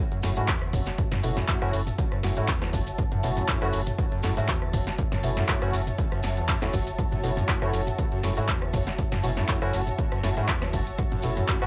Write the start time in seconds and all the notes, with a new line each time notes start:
Already playing: F#4 C#5 E5 A5
0.12 F#2, closed hi-hat
0.23 F#1 F#2 A3 C#4 E4 F#4, snare, open hi-hat, maracas
0.36 G#2 A3 C#4 E4 F#4, closed hi-hat, maracas
0.48 E2, kick, clap, closed hi-hat, maracas
0.62 cross-stick
0.73 F#1 F#2, kick, mid tom, open hi-hat, maracas
0.86 snare, closed hi-hat, maracas
0.98 F#2, kick, closed hi-hat, maracas
1.12 F#2, snare, closed hi-hat, mid tom
1.23 F#1 B2 A3 C#4 E4 F#4, open hi-hat, maracas
1.37 F#2, snare, closed hi-hat, mid tom, maracas
1.48 F#2, kick, clap, closed hi-hat, maracas
1.62 F#2 A3 C#4 E4 F#4, cross-stick, closed hi-hat
1.73 F#1 F#2, open hi-hat, maracas
1.87 closed hi-hat, mid tom, maracas
1.98 F#1, kick, closed hi-hat, maracas
2.12 F#2, cross-stick, closed hi-hat
2.23 F#1 F#2 A3 C#4 E4 F#4, snare, open hi-hat, maracas
2.36 G#2 A3 C#4 E4 F#4, closed hi-hat, maracas
2.48 E2, kick, clap, closed hi-hat, maracas
2.62 cross-stick, snare
2.73 F#1 F#2, kick, open hi-hat, maracas
2.87 closed hi-hat, maracas
2.98 F#2, kick, closed hi-hat, maracas
3.12 F#2, closed hi-hat, mid tom
3.23 F#1 B2 A3 C#4 E4 F#4, open hi-hat, maracas
3.37 F#2, closed hi-hat, mid tom, maracas
3.48 F#2, kick, clap, closed hi-hat, maracas
3.62 F#2 A3 C#4 E4 F#4, cross-stick, closed hi-hat
3.73 F#1 F#2, open hi-hat, maracas
3.86 closed hi-hat, mid tom, maracas
3.98 F#1, kick, closed hi-hat, maracas
4.12 F#2, closed hi-hat
4.23 F#1 F#2 A3 C#4 E4 F#4, snare, open hi-hat, maracas
4.37 G#2 A3 C#4 E4 F#4, closed hi-hat, maracas
4.48 E2, kick, clap, closed hi-hat, maracas
4.62 cross-stick
4.73 F#1 F#2, kick, mid tom, open hi-hat, maracas
4.87 snare, closed hi-hat, maracas
4.98 F#2, kick, closed hi-hat, maracas
5.12 F#2, snare, closed hi-hat, mid tom
5.23 F#1 B2 A3 C#4 E4 F#4, open hi-hat, maracas
5.37 F#2, snare, closed hi-hat, mid tom, maracas
5.48 F#2, kick, clap, closed hi-hat, maracas
5.62 F#2 A3 C#4 E4 F#4, cross-stick, closed hi-hat
5.73 F#1 F#2, open hi-hat, maracas
5.87 closed hi-hat, mid tom, maracas
5.98 F#1, kick, closed hi-hat, maracas
6.12 F#2, cross-stick, closed hi-hat
6.23 F#1 F#2, snare, open hi-hat, maracas
6.37 E2, closed hi-hat, maracas
6.48 F#2, kick, clap, closed hi-hat, maracas
6.62 E2 A3 C#4 E4 F#4, cross-stick, snare
6.73 F#1 F#2, kick, open hi-hat, maracas
6.87 closed hi-hat, maracas
6.98 F#2, kick, closed hi-hat, maracas
7.12 F#2, closed hi-hat, mid tom
7.23 F#1 B2 A3 C#4 E4 F#4, open hi-hat, maracas
7.37 F#2, closed hi-hat, mid tom, maracas
7.48 F#2, kick, clap, closed hi-hat, maracas
7.62 F#2 A3 C#4 E4 F#4, cross-stick, closed hi-hat
7.73 F#1 F#2, open hi-hat, maracas
7.87 closed hi-hat, mid tom, maracas
7.98 F#1, kick, closed hi-hat, maracas
8.12 F#2, closed hi-hat
8.23 F#1 F#2 A3 C#4 E4 F#4, snare, open hi-hat, maracas
8.37 G#2 A3 C#4 E4 F#4, closed hi-hat, maracas
8.48 E2, kick, clap, closed hi-hat, maracas
8.62 cross-stick
8.73 F#1 F#2, kick, mid tom, open hi-hat, maracas
8.87 snare, closed hi-hat, maracas
8.98 F#2, kick, closed hi-hat, maracas
9.12 F#2, snare, closed hi-hat, mid tom
9.23 F#1 B2 A3 C#4 E4 F#4, open hi-hat, maracas
9.37 F#2, snare, closed hi-hat, mid tom, maracas
9.48 F#2, kick, clap, closed hi-hat, maracas
9.62 F#2 A3 C#4 E4 F#4, cross-stick, closed hi-hat
9.73 F#1 F#2, open hi-hat, maracas
9.87 closed hi-hat, mid tom, maracas
9.98 F#1, kick, closed hi-hat, maracas
10.12 F#2, cross-stick, closed hi-hat
10.23 F#1 F#2 A3 C#4 E4 F#4, snare, open hi-hat, maracas
10.37 G#2 A3 C#4 E4 F#4, closed hi-hat, maracas
10.48 E2, kick, clap, closed hi-hat, maracas
10.62 cross-stick, snare
10.73 F#1 F#2, kick, open hi-hat, maracas
10.86 closed hi-hat, maracas
10.98 F#2, kick, closed hi-hat, maracas
11.12 F#2, closed hi-hat, mid tom
11.22 F#1 B2 A3 C#4 E4 F#4, open hi-hat, maracas
11.37 F#2, closed hi-hat, mid tom, maracas
11.48 F#2, kick, clap, closed hi-hat, maracas
11.62 F#2 A3 C#4 E4 F#4, cross-stick, closed hi-hat